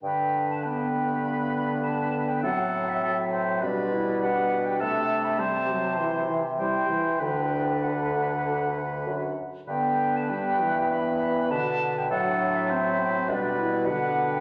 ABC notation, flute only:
X:1
M:4/4
L:1/16
Q:1/4=100
K:G
V:1 name="Flute"
g3 a g4 b4 a3 g | f3 e4- e d4 f3 g | a3 b a4 c'3 z g4 | g4 f8- f2 z2 |
g3 a g4 b4 a3 g | f3 e4- e d4 f3 g |]